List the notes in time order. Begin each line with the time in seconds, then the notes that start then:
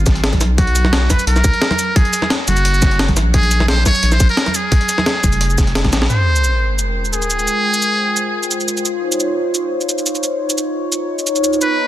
Already playing: G#1
0.06 kick, snare, closed hi-hat, high conga, cabasa
0.16 closed hi-hat
0.24 snare, closed hi-hat
0.33 kick, closed hi-hat, high conga
0.41 B1, snare, closed hi-hat, cabasa
0.58 F#4, kick, closed hi-hat, high conga
0.67 closed hi-hat
0.76 closed hi-hat, cabasa
0.84 snare, high conga
0.93 snare, closed hi-hat
1.10 B4, kick, snare, closed hi-hat, high conga, cabasa
1.19 closed hi-hat, cabasa
1.27 B1 A#4, closed hi-hat
1.36 snare, cabasa
1.44 B1, kick, closed hi-hat, high conga, cabasa
1.53 closed hi-hat
1.62 snare, closed hi-hat
1.71 snare, closed hi-hat, high conga
1.79 closed hi-hat, cabasa
1.96 G#4, kick, closed hi-hat, high conga
2.05 closed hi-hat
2.13 closed hi-hat, cabasa
2.22 snare, high conga
2.30 snare, closed hi-hat
2.48 F#1 F#4, closed hi-hat, high conga, cabasa
2.57 closed hi-hat, cabasa
2.65 closed hi-hat
2.74 cabasa
2.82 kick, snare, closed hi-hat, high conga, cabasa
2.91 closed hi-hat
2.99 snare, closed hi-hat
3.08 kick, closed hi-hat, high conga
3.17 A#1, snare, closed hi-hat, cabasa
3.34 G#4, kick, closed hi-hat, high conga
3.43 closed hi-hat
3.51 closed hi-hat, cabasa
3.60 snare, high conga
3.68 C5, snare, closed hi-hat
3.86 C#5, kick, snare, closed hi-hat, high conga, cabasa
3.95 closed hi-hat, cabasa
4.03 A#1, closed hi-hat
4.12 C5, snare, cabasa
4.20 A#1, kick, closed hi-hat, high conga, cabasa
4.29 A#4, closed hi-hat
4.37 snare, closed hi-hat
4.46 snare, closed hi-hat, high conga
4.54 G#4, closed hi-hat, cabasa
4.72 kick, closed hi-hat, high conga
4.81 closed hi-hat
4.89 closed hi-hat, cabasa
4.98 snare, high conga
5.06 snare, closed hi-hat
5.23 F1, kick, closed hi-hat, high conga, cabasa
5.32 closed hi-hat, cabasa
5.41 closed hi-hat
5.50 cabasa
5.58 kick, snare, closed hi-hat, high conga, cabasa
5.67 closed hi-hat
5.75 snare, closed hi-hat
5.84 kick, snare, closed hi-hat, high conga
5.92 A#1, snare, closed hi-hat, cabasa
6.02 snare
6.10 G#3 F4 A#4 C5 G5, sub drop, cabasa
6.36 cabasa
6.44 cabasa
6.79 cabasa
7.05 cabasa
7.13 G#4, cabasa
7.22 cabasa
7.30 cabasa
7.39 cabasa
7.48 cabasa
7.74 cabasa
7.82 cabasa
8.17 cabasa
8.43 cabasa
8.51 cabasa
8.60 cabasa
8.68 cabasa
8.77 cabasa
8.86 D#4 C#5, cabasa
9.12 cabasa
9.20 cabasa
9.55 cabasa
9.81 cabasa
9.89 cabasa
9.98 cabasa
10.06 cabasa
10.15 cabasa
10.23 cabasa
10.50 cabasa
10.58 cabasa
10.92 cabasa
11.19 cabasa
11.27 cabasa
11.36 cabasa
11.44 cabasa
11.53 cabasa
11.62 B3 B4 A#5, cabasa